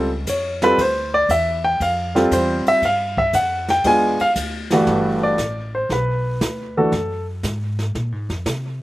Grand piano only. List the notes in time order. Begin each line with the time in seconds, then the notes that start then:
0.29 C#5
0.63 G3 C4 F4 A4 B4
0.81 C5
1.14 D5
1.31 E5
1.64 G5
1.82 F5
2.15 G3 C4 F4 A4
2.33 C5
2.68 E5
2.85 F5
3.18 E5
3.35 F#5
3.70 G5
3.85 G#3 B3 D4 F4 G#5
4.21 F5
4.72 G2 E3 A3 D4 F#4
5.23 D5
5.75 C5
5.92 B4
6.77 E3 A3 D4 F#4 A4